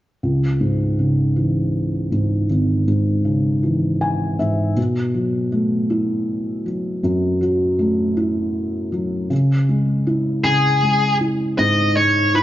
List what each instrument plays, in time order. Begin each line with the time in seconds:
0.23 felt piano C#2
0.61 felt piano G#2
0.99 felt piano C#3
1.36 felt piano E3
2.12 felt piano G#2
2.50 felt piano G#1
2.88 felt piano G#2
3.25 felt piano C#3
3.63 felt piano E3
4.01 felt piano G#5
4.39 felt piano G#2 E5
4.77 felt piano B2
5.14 felt piano F#3
5.52 felt piano A3
5.90 felt piano E4
6.66 felt piano F#3
7.03 felt piano F#2
7.41 felt piano F#3
7.79 felt piano A3
8.17 felt piano E4
8.92 felt piano F#3
9.30 felt piano C#3
9.69 felt piano G#3
10.07 felt piano E4
10.44 felt piano C#3, lead electric guitar G#4
10.83 felt piano G#3
11.20 felt piano E4
11.58 felt piano G#2, lead electric guitar D#5
11.96 felt piano G#3, lead electric guitar C#5
12.34 felt piano E4, lead electric guitar B4